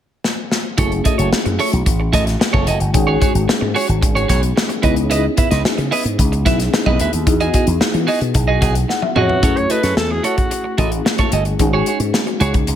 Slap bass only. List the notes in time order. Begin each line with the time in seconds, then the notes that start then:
0.78 F#1
1.19 F#1
1.46 F#2
1.73 B1
1.86 A1
2.13 A1
2.54 F#1
2.67 F#1
2.81 G1
2.94 G#1
3.35 G#1
3.48 muted slap bass stroke
3.62 G#2
3.89 G#1
4.02 G#1
4.29 B1
4.83 C#2
5.51 C#2
5.65 muted slap bass stroke
5.78 C#3
6.05 G#2
6.19 C#2
6.46 B1
6.86 B1
6.99 D2
7.13 D#2
7.27 E2
7.67 E2
7.81 muted slap bass stroke
7.94 E3
8.21 B2
8.35 B1
8.62 B1
9.16 F2
9.43 F#2
9.83 F#2
9.97 E2
10.78 A1
11.32 G1
11.59 G#1
12.00 G#2
12.40 C#2
12.68 C#2